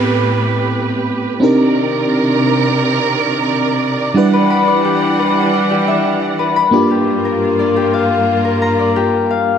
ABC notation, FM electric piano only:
X:1
M:4/4
L:1/8
Q:1/4=175
K:Gmix
V:1 name="FM electric piano"
[B,CEGA]8 | [CD_EG_B]8- | [CD_EG_B]8 | [G,DEB^f]8- |
[G,DEB^f]6- [G,DEBf] [_B,D=FG]- | [_B,DFG]8- | [_B,DFG]6- [B,DFG] z |]